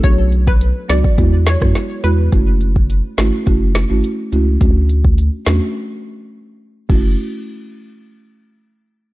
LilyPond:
<<
  \new Staff \with { instrumentName = "Synth pluck" } { \time 4/4 \key fis \minor \tempo 4 = 105 cis''16 r8 b'16 r8 d''16 r8. cis''16 r8. b'16 r16 | r1 | r1 | r1 | }
  \new Staff \with { instrumentName = "Marimba" } { \time 4/4 \key fis \minor <fis b d' fis'>4. <fis b d' fis'>8 <gis b e' fis'>16 r8 <gis b e' fis'>16 r8 <gis b e' fis'>16 r16 | <a cis' e' fis'>4. <a cis' e' fis'>8 <a cis' e' fis'>16 r8 <a cis' e' fis'>16 r8 <a cis' e' fis'>16 r16 | <a cis' d' fis'>4. <a cis' d' fis'>8 r2 | <a cis' e' fis'>8 r2. r8 | }
  \new Staff \with { instrumentName = "Sub bass" } { \clef bass \time 4/4 \key fis \minor b,,4~ b,,16 r16 cis,16 r16 e,8. fis,16 r8 e,8 | fis,,4~ fis,,16 r16 gis,,16 r16 fis,,8. gis,,16 r8 cis,8 | d,4~ d,16 r16 e,16 r2 r16 | fis,,8 r2. r8 | }
  \new DrumStaff \with { instrumentName = "Drums" } \drummode { \time 4/4 <hh bd>8 hh16 bd16 hh8 <hh sn>16 bd16 <hh bd>8 <hh sn>16 <bd ss>16 <hh sn>8 hh8 | <hh bd>8 hh16 bd16 hh8 <hh sn>8 <hh bd>8 <hh sn>8 hh8 hh8 | <hh bd>8 hh16 bd16 hh8 <hh sn>8 r4 r4 | <cymc bd>4 r4 r4 r4 | }
>>